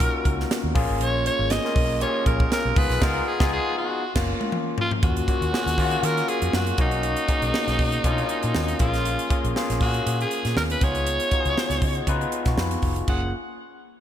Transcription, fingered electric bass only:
0.25 0.43 C#2 loud
0.64 0.72 D#2 medium
0.75 0.85 A#1 loud
0.89 0.97 G#1 medium
1.00 1.28 A#1 loud
1.39 1.57 G#1 medium
1.76 2.03 B1 loud
2.26 2.44 A#1 loud
2.65 2.73 B1 medium
2.77 2.86 C#2 loud
2.90 2.98 B1 loud
3.02 3.19 C#2 loud
3.40 3.57 C#2 loud
4.16 4.32 F#1 loud
5.03 5.21 D#2 loud
5.41 5.50 D#2 loud
5.66 5.74 D#2 loud
5.78 5.96 D#3 medium
6.03 6.21 D#3 loud
6.42 6.50 F2 medium
6.53 6.71 F#2 medium
6.78 7.14 B1 loud
7.42 7.50 B1 loud
7.67 7.76 B1 loud
7.79 7.97 B2 medium
8.04 8.22 B2 loud
8.44 8.52 A#2 medium
8.55 8.73 D#2 medium
8.80 9.16 A#1 loud
9.44 9.52 A#1 loud
9.70 9.78 A#1 loud
9.81 9.99 A#2 medium
10.06 10.24 A#2 loud
10.45 10.53 A#2 medium
10.56 10.74 D#2 loud
10.82 11.17 C#2 loud
11.46 11.54 C#2 loud
11.70 11.78 C#2 loud
11.82 12.00 C#3 medium
12.07 12.25 C#3 medium
12.46 12.54 B2 medium
12.57 12.75 F2 loud
12.83 13.01 F1 loud
13.08 13.31 F#1 medium

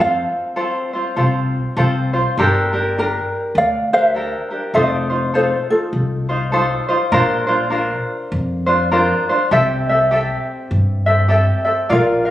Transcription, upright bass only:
0.00 0.21 F2 loud
1.17 1.55 C2 medium
1.77 2.15 C2 medium
2.37 3.14 G1 medium
3.55 4.32 D2 medium
4.74 5.51 F1 medium
5.93 6.70 C2 medium
7.12 7.89 A#1 loud
8.32 9.09 F2 medium
9.51 10.29 C2 medium
10.71 11.48 G2 medium
11.90 12.30 A#1 medium

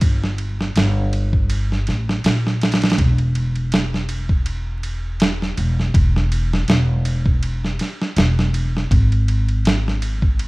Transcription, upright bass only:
0.02 0.73 G1 medium
0.76 1.84 G1 loud
1.88 2.21 A1 medium
2.25 2.95 A#1 medium
2.99 5.54 E1 loud
5.58 5.91 E1 medium
5.95 6.65 E1 loud
6.68 7.76 E1 loud
8.17 8.87 E1 loud
8.91 10.48 G#1 loud

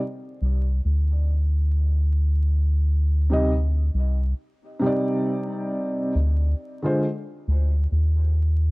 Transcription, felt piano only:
3.30 3.50 C3 medium
3.30 3.50 G3 medium
3.30 3.51 D#4 medium
3.30 3.52 D#5 medium
4.79 6.11 C3 medium
4.79 6.12 G3 medium
4.84 6.13 D#4 medium
4.84 6.14 D5 medium
6.82 7.03 D3 medium
6.82 7.03 G#3 medium
6.82 7.04 F4 medium
6.82 7.04 C5 medium

